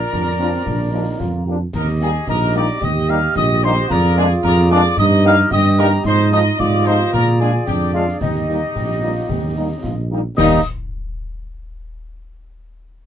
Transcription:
Already playing: F4 A#4 D5 A#5
0.12 F2 D4, concert bass drum, snare
0.39 F3 A#3 C4 D4 F4
0.66 A#1 D4, concert bass drum, snare
0.92 F3 A#3 D4 D#4 F4
1.20 F2 F4, concert bass drum, snare
1.46 F3 A#3 D4 F4 G4
1.73 D#2 G4 A#4 D#5 A#5, concert bass drum, snare, crash
1.87 snare
2.00 G3 A#3 D#4 G4 G#4 G#5, snare
2.27 A#1 D#4 G4 A#4 D#5 A#5, concert bass drum, snare
2.55 G3 A#3 D#4 G4 D5 D6
2.81 D#2 G4 D#5 D#6, concert bass drum
3.08 G3 A#3 D#4 G4 F5 F6, snare
3.35 A#1 G4 D#5 D#6, concert bass drum, snare
3.63 G3 A#3 D#4 G4 C5 C6
3.76 snare
3.89 F2 F4 G#4 A#4 D5 A#5, concert bass drum, snare, crash
4.03 snare
4.16 G#3 A#3 D4 G#4 G#5, snare
4.43 F2 G#4 A#4 D5 A#5, concert bass drum, snare
4.70 G#3 A#3 D4 G#4 D5 D6
4.97 G2 D#4 G4 D#5 D#6, concert bass drum
5.24 G3 A#3 D#4 G4 F5 F6, snare
5.51 G2 G4 D#5 D#6, concert bass drum, snare
5.78 G3 A#3 D#4 G4 A#4 A#5
5.91 snare
6.04 G#2 D#4 F4 C5 D#5 C6, concert bass drum, snare, crash
6.18 snare
6.31 F3 G#3 D#4 F4 D#5 D#6, snare
6.59 G#2 F4 G4 D5 D6, concert bass drum, snare
6.85 F3 G#3 D#4 F4 C5 C6
7.12 A#2 G#4 A#4 D5 A#5, concert bass drum
7.39 G#3 D4 F4 G#4 G#5, snare
7.66 F2 D4 G4 G5, concert bass drum, snare
7.93 G#3 D4 F4 F5
8.08 snare
8.20 D#2 D#4 G4 D#5, concert bass drum, snare, crash
8.35 snare
8.49 G3 A#3 D#4, snare
8.74 A#1 G4, concert bass drum, snare
9.02 G3 A#3 D#4 F4
9.29 D#2 G4, concert bass drum, snare
9.57 G3 A#3 D#4
9.82 A#1 F4, concert bass drum, snare
10.10 G3 A#3 D#4 G4
10.36 D#2 G3 A#3 D#4 G4 D#5 D#6, concert bass drum, snare, crash

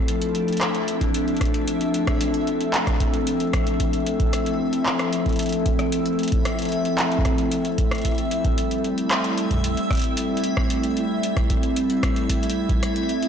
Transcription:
Already playing: F3 A3 C4 E4 A4 E5
0.01 D4
0.08 closed hi-hat
0.22 closed hi-hat
0.35 closed hi-hat
0.48 closed hi-hat
0.52 closed hi-hat
0.57 closed hi-hat
0.61 cross-stick, clap, closed hi-hat
0.75 closed hi-hat
0.88 closed hi-hat
1.01 kick, closed hi-hat
1.14 closed hi-hat
1.28 closed hi-hat
1.37 closed hi-hat
1.41 kick, cross-stick, closed hi-hat
1.45 closed hi-hat
1.54 closed hi-hat
1.68 closed hi-hat
1.81 closed hi-hat
1.94 closed hi-hat
2.07 kick, cross-stick, closed hi-hat
2.21 closed hi-hat
2.34 closed hi-hat
2.47 closed hi-hat
2.61 closed hi-hat
2.74 clap, closed hi-hat
2.87 kick, cross-stick, closed hi-hat
3.00 kick, closed hi-hat
3.14 closed hi-hat
3.27 closed hi-hat
3.40 closed hi-hat
3.53 kick, cross-stick, closed hi-hat
3.67 closed hi-hat
3.80 kick, closed hi-hat
3.93 closed hi-hat
4.07 closed hi-hat
4.20 kick, closed hi-hat
4.33 cross-stick, closed hi-hat
4.38 E4
4.46 closed hi-hat
4.73 closed hi-hat
4.86 clap
4.99 cross-stick, closed hi-hat
5.13 closed hi-hat
5.26 kick, closed hi-hat
5.29 closed hi-hat
5.33 closed hi-hat
5.36 closed hi-hat
5.39 closed hi-hat
5.43 closed hi-hat
5.46 closed hi-hat
5.49 closed hi-hat
5.52 closed hi-hat
5.66 kick, closed hi-hat
5.79 cross-stick, closed hi-hat
5.92 closed hi-hat
6.06 closed hi-hat
6.19 closed hi-hat
6.23 closed hi-hat
6.28 closed hi-hat
6.32 kick, closed hi-hat
6.45 cross-stick, closed hi-hat
6.59 closed hi-hat
6.62 closed hi-hat
6.65 closed hi-hat
6.69 closed hi-hat
6.72 closed hi-hat
6.85 closed hi-hat
6.98 clap, closed hi-hat
7.12 closed hi-hat
7.18 kick
7.25 kick, cross-stick, closed hi-hat
7.38 closed hi-hat
7.52 closed hi-hat
7.65 closed hi-hat
7.78 kick, closed hi-hat
7.91 cross-stick, closed hi-hat
7.95 closed hi-hat
7.98 closed hi-hat
8.02 G3, kick, closed hi-hat
8.05 closed hi-hat
8.08 closed hi-hat
8.11 closed hi-hat
8.15 closed hi-hat
8.18 closed hi-hat
8.31 closed hi-hat
8.45 kick, closed hi-hat
8.58 closed hi-hat
8.71 closed hi-hat
8.84 closed hi-hat
8.98 closed hi-hat
9.11 cross-stick, clap, closed hi-hat
9.24 closed hi-hat
9.38 closed hi-hat
9.51 kick, closed hi-hat
9.54 kick
9.57 kick
9.61 kick
9.64 kick, closed hi-hat
9.67 kick
9.71 kick
9.74 kick, closed hi-hat
9.91 kick, cross-stick, closed hi-hat
9.93 closed hi-hat
9.95 closed hi-hat
9.97 closed hi-hat
9.99 closed hi-hat
10.02 closed hi-hat
10.04 closed hi-hat
10.17 closed hi-hat
10.37 closed hi-hat
10.44 closed hi-hat
10.57 kick, cross-stick
10.70 closed hi-hat
10.83 closed hi-hat
10.97 closed hi-hat
11.23 closed hi-hat
11.37 kick, cross-stick, closed hi-hat
11.50 kick, closed hi-hat
11.63 closed hi-hat
11.76 closed hi-hat
11.90 closed hi-hat
12.03 kick, cross-stick, closed hi-hat
12.16 closed hi-hat
12.29 kick, closed hi-hat
12.43 closed hi-hat
12.50 closed hi-hat
12.69 kick, closed hi-hat
12.83 cross-stick, closed hi-hat
12.96 closed hi-hat
13.09 closed hi-hat
13.23 closed hi-hat

